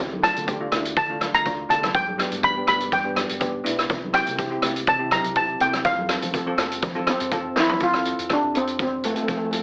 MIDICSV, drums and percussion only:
0, 0, Header, 1, 2, 480
1, 0, Start_track
1, 0, Key_signature, -1, "major"
1, 0, Tempo, 489396
1, 1905, Time_signature, 4, 2, 24, 8
1, 9442, End_track
2, 0, Start_track
2, 0, Title_t, "Drums"
2, 117, Note_on_c, 9, 63, 82
2, 215, Note_off_c, 9, 63, 0
2, 231, Note_on_c, 9, 37, 88
2, 231, Note_on_c, 9, 42, 89
2, 329, Note_off_c, 9, 37, 0
2, 329, Note_off_c, 9, 42, 0
2, 355, Note_on_c, 9, 64, 76
2, 357, Note_on_c, 9, 42, 66
2, 453, Note_off_c, 9, 64, 0
2, 455, Note_off_c, 9, 42, 0
2, 469, Note_on_c, 9, 36, 88
2, 470, Note_on_c, 9, 42, 59
2, 567, Note_off_c, 9, 36, 0
2, 568, Note_off_c, 9, 42, 0
2, 705, Note_on_c, 9, 37, 75
2, 705, Note_on_c, 9, 42, 76
2, 710, Note_on_c, 9, 64, 86
2, 803, Note_off_c, 9, 37, 0
2, 803, Note_off_c, 9, 42, 0
2, 808, Note_off_c, 9, 64, 0
2, 835, Note_on_c, 9, 42, 58
2, 933, Note_off_c, 9, 42, 0
2, 946, Note_on_c, 9, 42, 62
2, 948, Note_on_c, 9, 36, 118
2, 1044, Note_off_c, 9, 42, 0
2, 1046, Note_off_c, 9, 36, 0
2, 1185, Note_on_c, 9, 63, 77
2, 1188, Note_on_c, 9, 37, 81
2, 1188, Note_on_c, 9, 42, 79
2, 1283, Note_off_c, 9, 63, 0
2, 1286, Note_off_c, 9, 37, 0
2, 1286, Note_off_c, 9, 42, 0
2, 1315, Note_on_c, 9, 42, 67
2, 1413, Note_off_c, 9, 42, 0
2, 1427, Note_on_c, 9, 42, 59
2, 1428, Note_on_c, 9, 36, 84
2, 1525, Note_off_c, 9, 42, 0
2, 1527, Note_off_c, 9, 36, 0
2, 1671, Note_on_c, 9, 42, 86
2, 1674, Note_on_c, 9, 64, 77
2, 1769, Note_off_c, 9, 42, 0
2, 1772, Note_off_c, 9, 64, 0
2, 1797, Note_on_c, 9, 63, 75
2, 1799, Note_on_c, 9, 37, 76
2, 1799, Note_on_c, 9, 42, 57
2, 1895, Note_off_c, 9, 63, 0
2, 1897, Note_off_c, 9, 37, 0
2, 1897, Note_off_c, 9, 42, 0
2, 1909, Note_on_c, 9, 36, 104
2, 1909, Note_on_c, 9, 42, 57
2, 2007, Note_off_c, 9, 36, 0
2, 2007, Note_off_c, 9, 42, 0
2, 2035, Note_on_c, 9, 63, 83
2, 2133, Note_off_c, 9, 63, 0
2, 2152, Note_on_c, 9, 37, 83
2, 2152, Note_on_c, 9, 42, 84
2, 2250, Note_off_c, 9, 37, 0
2, 2250, Note_off_c, 9, 42, 0
2, 2271, Note_on_c, 9, 42, 68
2, 2278, Note_on_c, 9, 64, 77
2, 2369, Note_off_c, 9, 42, 0
2, 2376, Note_off_c, 9, 64, 0
2, 2387, Note_on_c, 9, 36, 89
2, 2387, Note_on_c, 9, 42, 68
2, 2485, Note_off_c, 9, 36, 0
2, 2485, Note_off_c, 9, 42, 0
2, 2622, Note_on_c, 9, 37, 80
2, 2622, Note_on_c, 9, 42, 86
2, 2632, Note_on_c, 9, 64, 75
2, 2720, Note_off_c, 9, 37, 0
2, 2720, Note_off_c, 9, 42, 0
2, 2730, Note_off_c, 9, 64, 0
2, 2750, Note_on_c, 9, 42, 65
2, 2848, Note_off_c, 9, 42, 0
2, 2863, Note_on_c, 9, 42, 67
2, 2865, Note_on_c, 9, 36, 108
2, 2961, Note_off_c, 9, 42, 0
2, 2963, Note_off_c, 9, 36, 0
2, 3103, Note_on_c, 9, 37, 86
2, 3103, Note_on_c, 9, 42, 87
2, 3108, Note_on_c, 9, 63, 74
2, 3201, Note_off_c, 9, 37, 0
2, 3201, Note_off_c, 9, 42, 0
2, 3206, Note_off_c, 9, 63, 0
2, 3229, Note_on_c, 9, 42, 73
2, 3327, Note_off_c, 9, 42, 0
2, 3338, Note_on_c, 9, 42, 66
2, 3344, Note_on_c, 9, 36, 87
2, 3436, Note_off_c, 9, 42, 0
2, 3442, Note_off_c, 9, 36, 0
2, 3587, Note_on_c, 9, 64, 77
2, 3588, Note_on_c, 9, 42, 95
2, 3685, Note_off_c, 9, 64, 0
2, 3686, Note_off_c, 9, 42, 0
2, 3715, Note_on_c, 9, 37, 71
2, 3715, Note_on_c, 9, 42, 62
2, 3813, Note_off_c, 9, 37, 0
2, 3813, Note_off_c, 9, 42, 0
2, 3818, Note_on_c, 9, 42, 60
2, 3824, Note_on_c, 9, 36, 108
2, 3916, Note_off_c, 9, 42, 0
2, 3922, Note_off_c, 9, 36, 0
2, 3952, Note_on_c, 9, 63, 76
2, 4050, Note_off_c, 9, 63, 0
2, 4058, Note_on_c, 9, 37, 87
2, 4058, Note_on_c, 9, 42, 85
2, 4156, Note_off_c, 9, 37, 0
2, 4156, Note_off_c, 9, 42, 0
2, 4183, Note_on_c, 9, 42, 65
2, 4191, Note_on_c, 9, 64, 76
2, 4281, Note_off_c, 9, 42, 0
2, 4289, Note_off_c, 9, 64, 0
2, 4300, Note_on_c, 9, 42, 64
2, 4302, Note_on_c, 9, 36, 88
2, 4398, Note_off_c, 9, 42, 0
2, 4400, Note_off_c, 9, 36, 0
2, 4534, Note_on_c, 9, 37, 82
2, 4534, Note_on_c, 9, 42, 88
2, 4540, Note_on_c, 9, 64, 81
2, 4632, Note_off_c, 9, 37, 0
2, 4632, Note_off_c, 9, 42, 0
2, 4638, Note_off_c, 9, 64, 0
2, 4667, Note_on_c, 9, 42, 65
2, 4765, Note_off_c, 9, 42, 0
2, 4775, Note_on_c, 9, 42, 63
2, 4780, Note_on_c, 9, 36, 106
2, 4873, Note_off_c, 9, 42, 0
2, 4878, Note_off_c, 9, 36, 0
2, 5014, Note_on_c, 9, 37, 89
2, 5014, Note_on_c, 9, 42, 74
2, 5025, Note_on_c, 9, 63, 77
2, 5113, Note_off_c, 9, 37, 0
2, 5113, Note_off_c, 9, 42, 0
2, 5123, Note_off_c, 9, 63, 0
2, 5140, Note_on_c, 9, 42, 61
2, 5239, Note_off_c, 9, 42, 0
2, 5251, Note_on_c, 9, 42, 63
2, 5256, Note_on_c, 9, 36, 82
2, 5349, Note_off_c, 9, 42, 0
2, 5354, Note_off_c, 9, 36, 0
2, 5494, Note_on_c, 9, 42, 79
2, 5499, Note_on_c, 9, 64, 79
2, 5592, Note_off_c, 9, 42, 0
2, 5597, Note_off_c, 9, 64, 0
2, 5623, Note_on_c, 9, 63, 76
2, 5624, Note_on_c, 9, 37, 74
2, 5624, Note_on_c, 9, 42, 59
2, 5722, Note_off_c, 9, 37, 0
2, 5722, Note_off_c, 9, 42, 0
2, 5722, Note_off_c, 9, 63, 0
2, 5732, Note_on_c, 9, 42, 62
2, 5737, Note_on_c, 9, 36, 105
2, 5830, Note_off_c, 9, 42, 0
2, 5835, Note_off_c, 9, 36, 0
2, 5864, Note_on_c, 9, 63, 79
2, 5962, Note_off_c, 9, 63, 0
2, 5972, Note_on_c, 9, 37, 88
2, 5972, Note_on_c, 9, 42, 81
2, 6070, Note_off_c, 9, 37, 0
2, 6070, Note_off_c, 9, 42, 0
2, 6102, Note_on_c, 9, 42, 68
2, 6103, Note_on_c, 9, 64, 69
2, 6200, Note_off_c, 9, 42, 0
2, 6202, Note_off_c, 9, 64, 0
2, 6216, Note_on_c, 9, 36, 85
2, 6218, Note_on_c, 9, 42, 62
2, 6314, Note_off_c, 9, 36, 0
2, 6316, Note_off_c, 9, 42, 0
2, 6450, Note_on_c, 9, 64, 76
2, 6453, Note_on_c, 9, 37, 81
2, 6453, Note_on_c, 9, 42, 81
2, 6548, Note_off_c, 9, 64, 0
2, 6552, Note_off_c, 9, 37, 0
2, 6552, Note_off_c, 9, 42, 0
2, 6586, Note_on_c, 9, 42, 61
2, 6684, Note_off_c, 9, 42, 0
2, 6690, Note_on_c, 9, 42, 61
2, 6695, Note_on_c, 9, 36, 122
2, 6788, Note_off_c, 9, 42, 0
2, 6793, Note_off_c, 9, 36, 0
2, 6824, Note_on_c, 9, 63, 67
2, 6922, Note_off_c, 9, 63, 0
2, 6932, Note_on_c, 9, 63, 75
2, 6933, Note_on_c, 9, 37, 91
2, 6933, Note_on_c, 9, 42, 80
2, 7030, Note_off_c, 9, 63, 0
2, 7032, Note_off_c, 9, 37, 0
2, 7032, Note_off_c, 9, 42, 0
2, 7061, Note_on_c, 9, 42, 71
2, 7159, Note_off_c, 9, 42, 0
2, 7172, Note_on_c, 9, 42, 67
2, 7176, Note_on_c, 9, 36, 84
2, 7270, Note_off_c, 9, 42, 0
2, 7274, Note_off_c, 9, 36, 0
2, 7414, Note_on_c, 9, 38, 71
2, 7414, Note_on_c, 9, 64, 81
2, 7512, Note_off_c, 9, 38, 0
2, 7512, Note_off_c, 9, 64, 0
2, 7538, Note_on_c, 9, 63, 74
2, 7544, Note_on_c, 9, 43, 85
2, 7636, Note_off_c, 9, 63, 0
2, 7642, Note_off_c, 9, 43, 0
2, 7650, Note_on_c, 9, 42, 53
2, 7657, Note_on_c, 9, 36, 88
2, 7748, Note_off_c, 9, 42, 0
2, 7755, Note_off_c, 9, 36, 0
2, 7783, Note_on_c, 9, 37, 74
2, 7881, Note_off_c, 9, 37, 0
2, 7897, Note_on_c, 9, 42, 75
2, 7995, Note_off_c, 9, 42, 0
2, 8030, Note_on_c, 9, 42, 62
2, 8128, Note_off_c, 9, 42, 0
2, 8136, Note_on_c, 9, 37, 69
2, 8136, Note_on_c, 9, 42, 59
2, 8141, Note_on_c, 9, 36, 80
2, 8234, Note_off_c, 9, 37, 0
2, 8234, Note_off_c, 9, 42, 0
2, 8239, Note_off_c, 9, 36, 0
2, 8384, Note_on_c, 9, 42, 72
2, 8482, Note_off_c, 9, 42, 0
2, 8506, Note_on_c, 9, 42, 51
2, 8604, Note_off_c, 9, 42, 0
2, 8620, Note_on_c, 9, 42, 57
2, 8624, Note_on_c, 9, 36, 100
2, 8718, Note_off_c, 9, 42, 0
2, 8722, Note_off_c, 9, 36, 0
2, 8861, Note_on_c, 9, 42, 71
2, 8959, Note_off_c, 9, 42, 0
2, 8981, Note_on_c, 9, 42, 53
2, 9079, Note_off_c, 9, 42, 0
2, 9103, Note_on_c, 9, 42, 49
2, 9105, Note_on_c, 9, 36, 68
2, 9202, Note_off_c, 9, 42, 0
2, 9203, Note_off_c, 9, 36, 0
2, 9342, Note_on_c, 9, 42, 76
2, 9440, Note_off_c, 9, 42, 0
2, 9442, End_track
0, 0, End_of_file